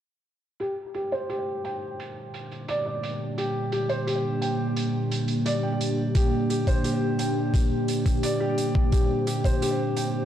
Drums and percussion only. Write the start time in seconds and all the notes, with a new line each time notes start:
0.60 closed hi-hat
0.94 closed hi-hat
1.12 closed hi-hat
1.30 closed hi-hat
1.65 closed hi-hat
2.00 closed hi-hat
2.34 closed hi-hat
2.51 closed hi-hat
2.68 closed hi-hat
3.03 closed hi-hat
3.38 closed hi-hat
3.72 closed hi-hat
3.89 closed hi-hat
4.08 closed hi-hat
4.42 closed hi-hat
4.77 closed hi-hat
5.12 closed hi-hat
5.28 closed hi-hat
5.46 closed hi-hat
5.81 closed hi-hat
6.15 kick, closed hi-hat
6.50 closed hi-hat
6.67 kick, closed hi-hat
6.84 closed hi-hat
7.19 closed hi-hat
7.54 kick, closed hi-hat
7.88 closed hi-hat
8.06 kick, closed hi-hat
8.23 closed hi-hat
8.58 closed hi-hat
8.75 kick
8.92 kick, closed hi-hat
9.27 closed hi-hat
9.44 kick, closed hi-hat
9.62 closed hi-hat
9.97 closed hi-hat